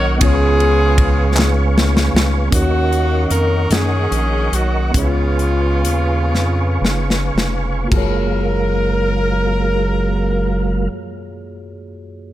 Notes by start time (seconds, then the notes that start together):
Already playing: B1 A#3 C#4 D#4 F#4 A#4 C#5 D#5 F#5 C#6
0.18 C#2 C#3 B3 C#4 F4, kick, ride
0.22 B3 F4 G#4 B4 C#5 F5 G#5
0.60 ride
0.98 kick, ride
1.36 snare, clap
1.78 snare
1.97 snare
2.14 C#2, snare
2.49 D#2 D#3 A#3 C#4 D#4 A#4 D#5 F#5 C#6, kick, closed hi-hat
2.54 A#3 C#4 F#4 C#5
2.92 closed hi-hat
3.31 F2 A#4, closed hi-hat
3.71 F#2 C#4 G#4, snare, closed hi-hat
4.12 A#1, closed hi-hat
4.52 B1 F#4, closed hi-hat
4.91 C#2 C#3 B3 C#4 F4, kick, closed hi-hat
4.95 G#3 B3 F4 G#4 B4 C#5 F5 G#5
5.39 closed hi-hat
5.84 D#2, closed hi-hat
6.32 F2, snare
6.81 F#1, snare
7.10 snare
7.35 F1, snare
7.84 A#3 F4
7.91 F#1 F#2 F#3 G#3 F#4 G#4 A#4 F5, kick, crash
7.97 C#5